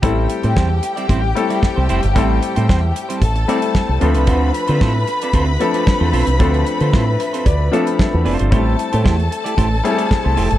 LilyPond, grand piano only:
\new Staff \with { instrumentName = "Grand piano" } { \time 4/4 \key a \minor \tempo 4 = 113 << { r1 | r1 | r1 | r4. e''8 d''4 e''8 d''8 |
r1 | } \\ { <g a c' e' a'>4. r4 <g a c' e' a'>4 r8 | <g a c' e' a'>4. r4 <g a c' e' a'>4 <f a c' d' a'>8~ | <f a c' d' a'>4 r4. <f a c' d' a'>4 r8 | <f a c' d' a'>4. r4 <f a c' d' a'>4 r8 |
<g a c' e' a'>4. r4 <g a c' e' gis' a'>4 r8 | } >> }